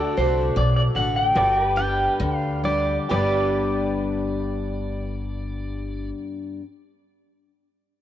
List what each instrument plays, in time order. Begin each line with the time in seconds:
Already playing: upright bass D2, steel-string acoustic guitar D3, honky-tonk piano F#4 A4 D5, pedal steel guitar A4 D5
0.00 pedal steel guitar F#4
0.17 upright bass C2, steel-string acoustic guitar D3 A3 D4 F#4, clean electric guitar C5
0.56 upright bass B1, steel-string acoustic guitar A2, clean electric guitar D5
0.76 clean electric guitar D5
0.95 upright bass A1, steel-string acoustic guitar D3 A3 D4 F#4, clean electric guitar F#5
1.16 clean electric guitar G5
1.35 upright bass G1, steel-string acoustic guitar G2, pedal steel guitar F#4 A4 D5, honky-tonk piano G4 B4 D5
1.54 pedal steel guitar A#4
1.60 pedal steel guitar G4
1.66 pedal steel guitar B4
1.76 steel-string acoustic guitar G3 B3 D4 G4, pedal steel guitar G5
2.20 upright bass D2, steel-string acoustic guitar D3
2.36 pedal steel guitar F5
2.64 steel-string acoustic guitar G3 B3 D4 G4, pedal steel guitar D5
3.09 upright bass G1, steel-string acoustic guitar G2 D3 G3 B3 D4, honky-tonk piano G4 B4, pedal steel guitar G4 B4 D5
3.13 steel-string acoustic guitar G4, honky-tonk piano D5, pedal steel guitar D5